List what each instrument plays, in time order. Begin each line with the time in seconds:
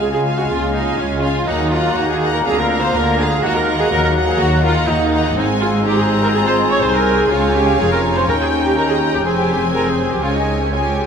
Already playing: bassoon G#3, french horn section G#3 F4, violin section F5 G#5, oboe F5
0.00 double bass section C#2, cello section C#3, clarinet G#3, viola section G#4, flute G#5
0.13 viola section G#4, flute G#5
0.25 violin section F5 G#5
0.37 viola section F#4, flute F#5
0.49 double bass section C#2, cello section C#3, clarinet A#3, viola section F4, flute F5
0.73 viola section D#4, flute D#5, violin section F5 G#5
0.98 double bass section C#2, cello section C#3, clarinet G#3, viola section C#4, flute C#5
1.22 viola section F4, flute F5, violin section F5 G#5
1.46 double bass section D#2, cello section D#3, clarinet F#3, bassoon A#3, french horn section A#3 F#4, viola section D#4, violin section D#5 F#5 A#5, flute D#5, oboe F#5
1.71 viola section F4, violin section D#5 F#5 A#5, flute F5
1.96 double bass section D#2, cello section D#3, clarinet D#4, viola section F#4, flute F#5
2.09 viola section G#4, flute G#5
2.21 violin section D#5 F#5 A#5
2.33 viola section A#4, flute A#5
2.45 double bass section D2, cello section D3, clarinet C4, french horn section F4, viola section G#4, violin section F5 A#5, oboe F5, flute G#5
2.58 viola section A#4, flute A#5
2.70 violin section F5 A#5
2.81 viola section C5, flute C6
2.94 double bass section D2, cello section D3, clarinet A#3, viola section A#4, flute A#5
3.17 viola section G#4, violin section F5 A#5, flute G#5
3.42 double bass section D#2, cello section D#3, clarinet G#3, viola section F#4, french horn section F#4, violin section D#5 F#5 A#5, flute F#5, oboe F#5
3.54 viola section A#4, flute A#5
3.68 violin section D#5 F#5 A#5
3.79 viola section G#4, flute G#5
3.91 double bass section D#2, cello section D#3, clarinet F#3, viola section A#4, flute A#5
4.04 viola section A#4, flute A#5
4.16 violin section D#5 F#5 A#5
4.28 viola section G#4, flute G#5
4.40 double bass section D#2, cello section D#3, viola section F#4, flute F#5
4.64 viola section F4, violin section D#5 F#5 A#5, flute F5
4.89 double bass section D#2, cello section D#3, clarinet A#3, viola section D#4, flute D#5
5.13 violin section D#5 F#5 A#5
5.37 double bass section G#1, cello section G#2, bassoon C4, french horn section C4 G#4, clarinet C4, viola section D#4, violin section C5 G#5, flute D#5, oboe G#5
5.61 viola section F4, flute F5
5.85 clarinet D#4, viola section G4, violin section D#5 A#5, flute G5
5.98 viola section G#4, flute G#5
6.22 viola section A#4, flute A#5
6.34 clarinet F4, viola section G#4, violin section D#5, flute G#5
6.46 viola section C5, flute C6
6.71 viola section C#5, flute C#6
6.82 cello section C2, double bass section C2, clarinet D#4, viola section C5, violin section G#5, flute C6
6.95 viola section A#4, flute A#5
7.20 viola section G#4, flute G#5
7.31 cello section C#2, double bass section C#2, bassoon C#4, french horn section C#4, clarinet C#4, viola section F4, violin section C#5 F5, flute F5
7.55 viola section G4, flute G5
7.80 double bass section F1, cello section F2, clarinet F4, viola section G#4, flute G#5
7.92 viola section A#4, flute A#5
8.17 viola section C5, flute C6
8.28 cello section D#2, double bass section D#2, clarinet D#4, french horn section G4, viola section A#4, violin section C#5 G5, oboe G5, flute A#5
8.41 viola section G#4, flute G#5
8.65 viola section G4, flute G5
8.77 viola section A#4, violin section D#5 G5 A#5, flute A#5
8.89 viola section G#4, flute G#5
9.13 viola section G4, flute G5
9.25 double bass section F1, cello section F2, french horn section C4 G#4, bassoon C4, viola section G#4, violin section C5 G#5, flute G#5, oboe G#5
9.37 viola section G4, flute G5
9.62 viola section G#4, flute G#5
9.74 clarinet C4, viola section A#4, flute A#5
9.86 viola section G#4, flute G#5
10.11 viola section G4, flute G5
10.22 double bass section C#2, cello section C#2, clarinet C#4, bassoon C#4, french horn section C#4 G#4, viola section F4, violin section C#5 G#5, flute F5
10.35 viola section D#4, flute D#5
10.60 viola section C#4, flute C#5
10.72 french horn section C#4 G#4, clarinet F4, viola section G#4, violin section C#5 G#5, flute G#5
10.85 viola section G4, flute G5